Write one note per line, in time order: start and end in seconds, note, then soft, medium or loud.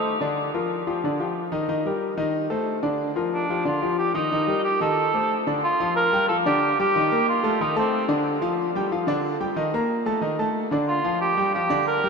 0.00 0.15 A3 medium
0.00 0.16 D#4 medium
0.00 0.15 A4 medium
0.00 0.15 C5 medium
0.21 0.47 D3 medium
0.21 0.48 D4 medium
0.21 0.48 D5 medium
0.54 0.81 F3 medium
0.54 0.81 F4 medium
0.54 0.81 A#4 medium
0.87 1.00 F3 medium
0.87 1.00 F4 medium
0.87 1.00 G4 medium
1.04 1.17 D3 medium
1.04 1.17 D4 medium
1.04 1.17 D5 medium
1.20 1.46 F3 medium
1.20 1.46 F4 medium
1.20 1.47 G4 medium
1.52 1.65 D#3 medium
1.52 1.65 D#4 medium
1.52 1.66 D#5 medium
1.68 1.82 D#3 medium
1.68 1.82 D#4 medium
1.68 1.82 D#5 medium
1.86 2.12 G3 medium
1.86 2.13 G4 medium
1.86 2.13 A#4 medium
2.17 2.44 D#3 medium
2.17 2.45 D#4 medium
2.17 2.45 D#5 medium
2.50 2.78 A3 medium
2.50 2.77 A4 medium
2.50 2.78 C5 medium
2.83 3.10 D3 medium
2.83 3.10 D4 medium
2.83 3.10 D5 medium
3.16 3.43 F3 medium
3.16 3.43 F4 medium
3.16 3.44 A#4 medium
3.34 3.64 D4 medium
3.50 3.63 F3 medium
3.50 3.63 F4 medium
3.50 3.63 G4 medium
3.65 3.79 D3 medium
3.65 3.79 D4 medium
3.65 3.96 F4 medium
3.65 3.79 D5 medium
3.82 4.09 F3 medium
3.82 4.09 F4 medium
3.82 4.10 G4 medium
3.98 4.14 G4 medium
4.14 4.28 D#3 medium
4.14 4.61 D#4 medium
4.14 4.28 D#4 medium
4.14 4.28 D#5 medium
4.32 4.45 D#3 medium
4.32 4.45 D#4 medium
4.32 4.45 D#5 medium
4.47 4.75 G3 medium
4.47 4.75 G4 medium
4.47 4.75 A#4 medium
4.63 4.79 G4 medium
4.81 5.08 D#3 medium
4.81 5.08 D#4 medium
4.81 5.43 A4 medium
4.81 5.08 D#5 medium
5.14 5.41 A3 medium
5.14 5.41 A4 medium
5.14 5.41 C5 medium
5.47 5.60 D3 medium
5.47 5.60 D4 medium
5.47 5.61 D5 medium
5.63 5.94 F4 loud
5.80 6.07 F3 medium
5.80 6.07 F4 medium
5.80 6.07 F5 medium
5.96 6.27 A#4 loud
6.13 6.26 G3 medium
6.13 6.26 G4 medium
6.13 6.26 G5 medium
6.28 6.43 F3 medium
6.28 6.43 F4 medium
6.28 6.36 A4 loud
6.28 6.43 F5 medium
6.46 6.72 D3 medium
6.46 6.73 D4 medium
6.46 6.76 G4 loud
6.46 6.73 D5 medium
6.79 6.92 G3 medium
6.79 7.24 G4 loud
6.79 6.92 G4 medium
6.79 6.92 G5 medium
6.96 7.09 D#3 medium
6.96 7.09 D#4 medium
6.96 7.09 D#5 medium
7.12 7.38 A#3 medium
7.12 7.39 A#4 medium
7.12 7.38 A#5 medium
7.29 7.63 F4 loud
7.44 7.57 A3 medium
7.44 7.57 A4 medium
7.44 7.58 A5 medium
7.61 7.74 D#3 medium
7.61 7.74 D#4 medium
7.61 7.77 D#4 medium
7.61 7.74 D#5 medium
7.76 8.03 A3 medium
7.76 8.08 C4 medium
7.76 8.03 A4 medium
7.76 8.03 A5 medium
8.08 8.36 D3 loud
8.08 8.36 D4 medium
8.08 8.36 D5 medium
8.41 8.68 F3 medium
8.41 8.69 F4 medium
8.41 8.69 F5 medium
8.75 8.89 G3 medium
8.75 8.89 G4 medium
8.75 8.89 G5 medium
8.91 9.05 F3 medium
8.91 9.05 F4 medium
8.91 9.05 F5 medium
9.07 9.34 D3 medium
9.07 9.35 D4 loud
9.07 9.35 D5 medium
9.40 9.54 G3 medium
9.40 9.54 G4 medium
9.40 9.54 G5 medium
9.56 9.70 D#3 medium
9.56 9.70 D#4 medium
9.56 9.70 D#5 medium
9.74 10.00 A#3 medium
9.74 10.01 A#4 medium
9.74 10.01 A#5 medium
10.06 10.19 A3 medium
10.06 10.20 A4 medium
10.06 10.20 A5 medium
10.21 10.35 D#3 medium
10.21 10.36 D#4 medium
10.21 10.35 D#5 medium
10.39 10.66 A3 medium
10.39 10.66 A4 medium
10.39 10.66 A5 medium
10.71 10.98 D3 medium
10.71 10.99 D4 medium
10.71 10.99 D5 medium
10.88 11.18 F4 loud
11.04 11.31 F3 medium
11.04 11.31 F4 medium
11.04 11.31 F5 medium
11.21 11.51 G4 medium
11.37 11.51 G3 medium
11.37 11.51 G4 medium
11.37 11.51 G5 medium
11.54 11.68 F3 medium
11.54 11.68 F4 medium
11.54 11.84 G4 medium
11.54 11.68 F5 medium
11.70 11.97 D3 medium
11.70 11.97 D4 loud
11.70 11.97 D5 loud
11.87 12.09 A#4 loud
12.04 12.09 G3 medium
12.04 12.09 G4 medium
12.04 12.09 G5 medium